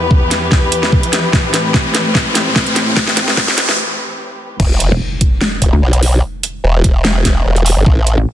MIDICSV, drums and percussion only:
0, 0, Header, 1, 2, 480
1, 0, Start_track
1, 0, Key_signature, 1, "minor"
1, 0, Tempo, 408163
1, 1566, Time_signature, 4, 2, 24, 8
1, 9800, End_track
2, 0, Start_track
2, 0, Title_t, "Drums"
2, 126, Note_on_c, 9, 36, 85
2, 244, Note_off_c, 9, 36, 0
2, 367, Note_on_c, 9, 38, 63
2, 367, Note_on_c, 9, 42, 80
2, 484, Note_off_c, 9, 38, 0
2, 484, Note_off_c, 9, 42, 0
2, 606, Note_on_c, 9, 36, 97
2, 607, Note_on_c, 9, 38, 64
2, 724, Note_off_c, 9, 36, 0
2, 724, Note_off_c, 9, 38, 0
2, 846, Note_on_c, 9, 42, 80
2, 964, Note_off_c, 9, 42, 0
2, 975, Note_on_c, 9, 38, 58
2, 1087, Note_on_c, 9, 36, 91
2, 1093, Note_off_c, 9, 38, 0
2, 1204, Note_off_c, 9, 36, 0
2, 1215, Note_on_c, 9, 42, 38
2, 1327, Note_off_c, 9, 42, 0
2, 1327, Note_on_c, 9, 38, 68
2, 1327, Note_on_c, 9, 42, 79
2, 1444, Note_off_c, 9, 38, 0
2, 1444, Note_off_c, 9, 42, 0
2, 1566, Note_on_c, 9, 36, 96
2, 1567, Note_on_c, 9, 38, 70
2, 1684, Note_off_c, 9, 36, 0
2, 1684, Note_off_c, 9, 38, 0
2, 1807, Note_on_c, 9, 38, 77
2, 1807, Note_on_c, 9, 42, 78
2, 1925, Note_off_c, 9, 38, 0
2, 1925, Note_off_c, 9, 42, 0
2, 2046, Note_on_c, 9, 36, 90
2, 2047, Note_on_c, 9, 38, 70
2, 2164, Note_off_c, 9, 36, 0
2, 2164, Note_off_c, 9, 38, 0
2, 2287, Note_on_c, 9, 38, 78
2, 2287, Note_on_c, 9, 42, 80
2, 2405, Note_off_c, 9, 38, 0
2, 2405, Note_off_c, 9, 42, 0
2, 2527, Note_on_c, 9, 36, 94
2, 2527, Note_on_c, 9, 38, 81
2, 2644, Note_off_c, 9, 36, 0
2, 2645, Note_off_c, 9, 38, 0
2, 2767, Note_on_c, 9, 38, 81
2, 2767, Note_on_c, 9, 42, 77
2, 2884, Note_off_c, 9, 38, 0
2, 2884, Note_off_c, 9, 42, 0
2, 3007, Note_on_c, 9, 36, 97
2, 3007, Note_on_c, 9, 38, 84
2, 3124, Note_off_c, 9, 36, 0
2, 3125, Note_off_c, 9, 38, 0
2, 3135, Note_on_c, 9, 42, 37
2, 3247, Note_off_c, 9, 42, 0
2, 3247, Note_on_c, 9, 38, 87
2, 3247, Note_on_c, 9, 42, 76
2, 3364, Note_off_c, 9, 38, 0
2, 3364, Note_off_c, 9, 42, 0
2, 3487, Note_on_c, 9, 36, 95
2, 3487, Note_on_c, 9, 38, 93
2, 3604, Note_off_c, 9, 36, 0
2, 3605, Note_off_c, 9, 38, 0
2, 3615, Note_on_c, 9, 38, 84
2, 3727, Note_off_c, 9, 38, 0
2, 3727, Note_on_c, 9, 38, 95
2, 3727, Note_on_c, 9, 42, 80
2, 3844, Note_off_c, 9, 38, 0
2, 3844, Note_off_c, 9, 42, 0
2, 3855, Note_on_c, 9, 38, 81
2, 3967, Note_off_c, 9, 38, 0
2, 3967, Note_on_c, 9, 36, 94
2, 3967, Note_on_c, 9, 38, 89
2, 4084, Note_off_c, 9, 36, 0
2, 4084, Note_off_c, 9, 38, 0
2, 4095, Note_on_c, 9, 38, 86
2, 4207, Note_off_c, 9, 38, 0
2, 4207, Note_on_c, 9, 38, 95
2, 4207, Note_on_c, 9, 42, 77
2, 4324, Note_off_c, 9, 38, 0
2, 4324, Note_off_c, 9, 42, 0
2, 4335, Note_on_c, 9, 38, 84
2, 4453, Note_off_c, 9, 38, 0
2, 5407, Note_on_c, 9, 36, 118
2, 5407, Note_on_c, 9, 49, 103
2, 5525, Note_off_c, 9, 36, 0
2, 5525, Note_off_c, 9, 49, 0
2, 5647, Note_on_c, 9, 42, 81
2, 5765, Note_off_c, 9, 42, 0
2, 6127, Note_on_c, 9, 36, 106
2, 6127, Note_on_c, 9, 42, 81
2, 6244, Note_off_c, 9, 42, 0
2, 6245, Note_off_c, 9, 36, 0
2, 6367, Note_on_c, 9, 38, 115
2, 6484, Note_off_c, 9, 38, 0
2, 6607, Note_on_c, 9, 36, 61
2, 6607, Note_on_c, 9, 42, 82
2, 6724, Note_off_c, 9, 36, 0
2, 6724, Note_off_c, 9, 42, 0
2, 6975, Note_on_c, 9, 42, 39
2, 7087, Note_on_c, 9, 46, 92
2, 7093, Note_off_c, 9, 42, 0
2, 7204, Note_off_c, 9, 46, 0
2, 7567, Note_on_c, 9, 42, 80
2, 7684, Note_off_c, 9, 42, 0
2, 8046, Note_on_c, 9, 42, 83
2, 8047, Note_on_c, 9, 36, 106
2, 8164, Note_off_c, 9, 36, 0
2, 8164, Note_off_c, 9, 42, 0
2, 8286, Note_on_c, 9, 38, 120
2, 8404, Note_off_c, 9, 38, 0
2, 8527, Note_on_c, 9, 36, 63
2, 8527, Note_on_c, 9, 38, 66
2, 8527, Note_on_c, 9, 42, 84
2, 8644, Note_off_c, 9, 36, 0
2, 8644, Note_off_c, 9, 38, 0
2, 8644, Note_off_c, 9, 42, 0
2, 8895, Note_on_c, 9, 42, 37
2, 9007, Note_on_c, 9, 46, 88
2, 9013, Note_off_c, 9, 42, 0
2, 9124, Note_off_c, 9, 46, 0
2, 9247, Note_on_c, 9, 36, 122
2, 9364, Note_off_c, 9, 36, 0
2, 9487, Note_on_c, 9, 42, 81
2, 9604, Note_off_c, 9, 42, 0
2, 9800, End_track
0, 0, End_of_file